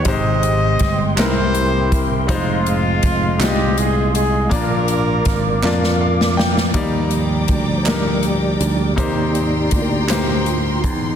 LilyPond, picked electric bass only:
\new Staff \with { instrumentName = "Picked electric bass" } { \clef bass \time 6/8 \key ees \major \tempo 4. = 54 aes,,4 g,,8 c,4. | f,,4 f,,8 c,4. | bes,,4 aes,,8 f,4. | ees,4 d,4. d,8 |
ees,4 d,4. fes,8 | }